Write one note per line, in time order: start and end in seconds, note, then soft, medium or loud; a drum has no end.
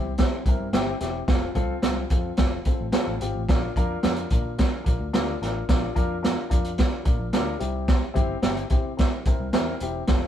0.00 0.21 C2 medium
0.00 0.10 C4 medium
0.00 0.10 E4 medium
0.00 0.11 G4 medium
0.18 0.38 C4 medium
0.18 0.38 E4 medium
0.18 0.38 A4 medium
0.18 kick medium
0.18 snare loud
0.18 closed hi-hat medium
0.46 0.56 C2 medium
0.46 0.66 C4 medium
0.46 0.67 E4 medium
0.46 0.67 A#4 medium
0.46 kick medium
0.46 closed hi-hat medium
0.60 0.70 G2 medium
0.73 0.93 G1 medium
0.73 0.93 C4 medium
0.73 0.93 E4 medium
0.73 0.93 G4 loud
0.73 snare medium
0.73 closed hi-hat medium
1.00 1.21 E1 medium
1.00 1.20 C4 medium
1.00 1.21 E4 medium
1.00 1.20 G4 medium
1.00 snare soft
1.00 closed hi-hat medium
1.28 1.48 F1 medium
1.28 1.47 C4 medium
1.28 1.48 F4 medium
1.28 1.48 A4 medium
1.28 kick loud
1.28 snare loud
1.28 closed hi-hat medium
1.55 1.75 C2 medium
1.55 1.75 C4 medium
1.55 1.75 F4 medium
1.55 1.75 A4 loud
1.55 kick medium
1.55 closed hi-hat medium
1.82 2.03 C2 medium
1.82 2.03 C4 medium
1.82 2.03 F4 medium
1.82 2.03 A4 medium
1.82 snare loud
1.82 closed hi-hat medium
2.10 2.31 F2 medium
2.10 2.30 C4 medium
2.10 2.30 F4 medium
2.10 2.31 A4 medium
2.10 kick medium
2.10 closed hi-hat medium
2.37 2.58 F1 medium
2.37 2.58 C4 medium
2.37 2.57 F4 medium
2.37 2.58 A4 medium
2.37 kick medium
2.37 snare loud
2.37 closed hi-hat medium
2.65 2.86 C4 medium
2.65 2.86 F4 medium
2.65 2.86 A4 medium
2.65 muted picked electric bass stroke soft
2.65 kick medium
2.65 closed hi-hat medium
2.81 2.90 A1 medium
2.92 3.12 C4 medium
2.92 3.13 F4 medium
2.92 3.13 A4 loud
2.92 snare loud
2.92 closed hi-hat medium
3.08 3.18 A1 medium
3.21 3.32 G#1 medium
3.21 3.41 C4 medium
3.21 3.41 F4 medium
3.21 3.41 G4 medium
3.21 closed hi-hat medium
3.35 3.45 A1 medium
3.48 3.68 A#1 medium
3.48 3.68 D4 medium
3.48 3.68 F4 medium
3.48 3.69 A#4 medium
3.48 kick loud
3.48 snare loud
3.48 closed hi-hat medium
3.76 3.96 F2 medium
3.76 3.96 D4 medium
3.76 3.96 F4 medium
3.76 3.96 A#4 loud
3.76 kick medium
3.76 closed hi-hat medium
4.03 4.24 F2 medium
4.03 4.23 D4 medium
4.03 4.23 F4 medium
4.03 4.23 A#4 medium
4.03 snare loud
4.03 closed hi-hat medium
4.16 closed hi-hat medium
4.30 4.61 A#2 medium
4.30 4.50 D4 medium
4.30 4.51 F4 medium
4.30 4.51 A#4 medium
4.30 kick medium
4.30 closed hi-hat medium
4.58 4.78 D4 medium
4.58 4.77 F4 medium
4.58 4.78 A#4 medium
4.58 kick medium
4.58 snare loud
4.58 closed hi-hat medium
4.84 4.96 A#1 medium
4.84 5.04 D4 medium
4.84 5.04 F4 medium
4.84 5.05 A#4 medium
4.84 kick medium
4.84 closed hi-hat medium
5.00 5.10 D2 medium
5.13 5.34 D2 medium
5.13 5.33 D4 loud
5.13 5.33 F4 medium
5.13 5.33 A#4 loud
5.13 snare loud
5.13 closed hi-hat medium
5.42 5.62 A1 medium
5.42 5.61 D4 medium
5.42 5.61 F4 medium
5.42 5.61 A#4 medium
5.42 snare soft
5.42 closed hi-hat medium
5.69 5.89 A#1 loud
5.69 5.88 D4 loud
5.69 5.88 F4 medium
5.69 5.88 A#4 medium
5.69 kick medium
5.69 snare loud
5.69 closed hi-hat medium
5.95 6.36 F2 medium
5.95 6.15 D4 loud
5.95 6.15 F4 medium
5.95 6.15 A#4 loud
5.95 kick medium
5.95 closed hi-hat medium
6.22 6.42 D4 medium
6.22 6.42 F4 medium
6.22 6.42 A#4 medium
6.22 snare medium
6.22 closed hi-hat medium
6.49 6.81 F2 medium
6.49 6.70 D4 medium
6.49 6.70 F4 medium
6.49 6.70 A#4 medium
6.49 kick medium
6.49 closed hi-hat medium
6.64 closed hi-hat soft
6.78 6.98 D4 medium
6.78 6.97 F4 medium
6.78 6.98 A#4 medium
6.78 kick medium
6.78 snare loud
6.78 closed hi-hat medium
7.05 7.16 A#2 medium
7.05 7.25 D4 medium
7.05 7.25 F4 medium
7.05 7.25 A#4 medium
7.05 kick medium
7.05 closed hi-hat medium
7.19 7.30 A#1 medium
7.33 7.54 D2 medium
7.33 7.53 D4 loud
7.33 7.53 F4 medium
7.33 7.53 A#4 loud
7.33 snare medium
7.33 closed hi-hat medium
7.59 8.01 C2 medium
7.59 8.05 C4 medium
7.59 8.04 E4 medium
7.59 8.04 G4 medium
7.59 closed hi-hat medium
7.88 kick loud
7.88 snare loud
7.88 closed hi-hat medium
8.14 8.36 G1 medium
8.14 8.34 C4 loud
8.14 8.34 E4 medium
8.14 8.35 G4 loud
8.14 kick medium
8.14 closed hi-hat medium
8.42 8.63 G1 medium
8.42 8.63 C4 medium
8.42 8.63 E4 medium
8.42 8.63 G4 medium
8.42 snare loud
8.42 closed hi-hat medium
8.57 closed hi-hat soft
8.70 9.01 C3 medium
8.70 8.90 C4 medium
8.70 8.90 E4 medium
8.70 8.90 G4 medium
8.70 kick medium
8.70 closed hi-hat medium
8.97 9.17 C4 medium
8.97 9.18 E4 medium
8.97 9.17 A#4 medium
8.97 kick medium
8.97 snare loud
8.97 closed hi-hat medium
9.25 9.36 C3 medium
9.25 9.46 C4 medium
9.25 9.46 E4 medium
9.25 9.46 A#4 medium
9.25 kick medium
9.25 closed hi-hat medium
9.40 9.50 C2 medium
9.53 9.74 E2 medium
9.53 9.73 C4 loud
9.53 9.73 E4 medium
9.53 9.73 A#4 loud
9.53 snare loud
9.53 closed hi-hat medium
9.80 10.02 E1 medium
9.80 10.01 C4 medium
9.80 10.01 E4 medium
9.80 10.02 G4 medium
9.80 closed hi-hat medium
10.07 10.27 F1 medium
10.07 10.27 C4 medium
10.07 10.27 F4 medium
10.07 10.27 A4 loud
10.07 kick medium
10.07 snare medium
10.07 closed hi-hat medium